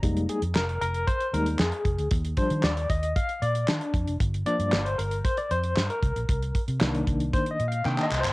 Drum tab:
HH |xxxx-xxxxxxx-xxx|xxxx-xxxxxxx-xxx|xxxx-xxxxxxx-xxx|xxxx-xxxxxxx----|
CP |----x-------x---|----x-------x---|----x-------x---|----x-------xxxx|
SD |----o-------o---|----o-------o---|----o-------o---|----o-----------|
BD |o-------o-----o-|o-o---o-o-----o-|o-------o-----o-|o-o---o-o-------|